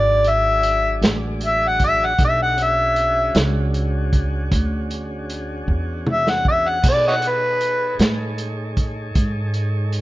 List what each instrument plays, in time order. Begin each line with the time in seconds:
Already playing: upright bass G#1, tonewheel organ F#3 D4 G#4 D5, harmonica D5
0.24 closed hi-hat
0.29 harmonica E5
0.63 closed hi-hat
1.02 upright bass A1, snare, closed hi-hat
1.41 closed hi-hat
1.46 harmonica E5
1.67 harmonica F#5
1.79 kick, closed hi-hat
1.84 harmonica E5
2.05 harmonica F#5
2.18 upright bass B1, tonewheel organ D4 D#4 G4 A4, kick, closed hi-hat
2.25 harmonica E5
2.43 harmonica F#5
2.56 tonewheel organ C#4 D4 F#4 G#4, closed hi-hat
2.63 harmonica E5
2.96 closed hi-hat
3.35 upright bass C#2, snare, closed hi-hat
3.74 closed hi-hat
4.13 kick, closed hi-hat
4.52 upright bass D2, kick, closed hi-hat
4.91 closed hi-hat
5.30 closed hi-hat
5.68 upright bass E2, kick
6.07 mid tom
6.11 harmonica E5
6.27 harmonica F#5, snare
6.45 harmonica E5, kick
6.69 harmonica F#5
6.82 upright bass B2, tonewheel organ D#4 G#4 A4 C#5, kick, closed hi-hat, crash
6.88 harmonica D5
7.08 harmonica C#5 D#5 F#5
7.22 closed hi-hat
7.28 harmonica B4
7.61 closed hi-hat
7.99 upright bass A2, snare, closed hi-hat
8.38 closed hi-hat
8.77 kick, closed hi-hat
9.15 upright bass G#2, kick, closed hi-hat
9.54 closed hi-hat
9.93 closed hi-hat